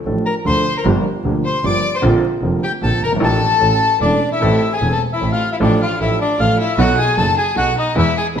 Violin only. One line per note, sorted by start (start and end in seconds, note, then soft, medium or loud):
0.26 0.35 A#4 medium
0.47 0.74 C5 medium
0.78 0.86 A#4 medium
1.45 1.63 C5 medium
1.67 1.93 D5 medium
1.96 2.04 C5 medium
2.63 2.72 G4 medium
2.83 3.01 A4 medium
3.04 3.12 A#4 medium
3.24 3.99 A4 loud
4.01 4.29 D4 medium
4.33 4.69 E4 medium
4.73 4.90 G#4 medium
4.92 5.01 A4 medium
5.14 5.31 E4 medium
5.33 5.50 F4 medium
5.54 5.57 E4 medium
5.62 5.79 D4 medium
5.82 5.99 F4 medium
6.00 6.18 E4 medium
6.21 6.38 D4 medium
6.39 6.57 F4 medium
6.58 6.77 E4 medium
6.77 6.96 F#4 medium
6.98 7.16 G#4 medium
7.17 7.36 A4 medium
7.37 7.55 G#4 medium
7.57 7.75 F#4 medium
7.79 7.96 D#4 medium
7.97 8.15 E4 medium
8.18 8.26 G#4 medium